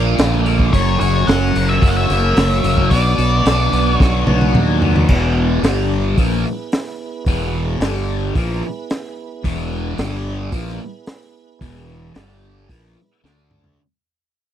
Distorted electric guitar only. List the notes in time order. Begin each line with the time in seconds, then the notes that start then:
Already playing: A#3 D4 F4
0.18 D3
0.46 A#3
0.73 F#2
1.00 F#4
1.27 C#4
1.55 A#3
1.82 F#4
2.10 A#3
2.37 F#3
2.64 A#3
2.91 B2
3.18 F#4
3.46 D4
3.73 B3
4.00 F#4
4.27 B3
4.55 F#3
4.82 B3
5.09 E2 B2 E3
5.63 G2 D3 G3
6.18 A#2 F3 A#3
7.27 E2 B2 E3
7.81 G2 D3 G3
8.36 A#2 F3 A#3
9.44 E2 B2 E3
9.98 G2 D3 G3
10.52 A#2 F3 A#3
11.61 E2 B2 E3
12.15 G2 D3 G3
12.69 A#2 F3 A#3
13.23 D3 A3 D4